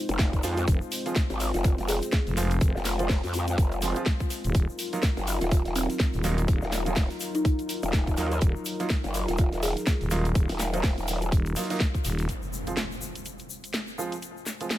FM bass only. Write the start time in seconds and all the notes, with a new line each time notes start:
0.68 F1
2.27 F1
2.61 F1
4.45 D#1
4.55 D#1
6.14 D#1
6.48 D#1
8.42 D#1
10.01 D#1
10.35 D#1
11.32 D#1
12.05 D#1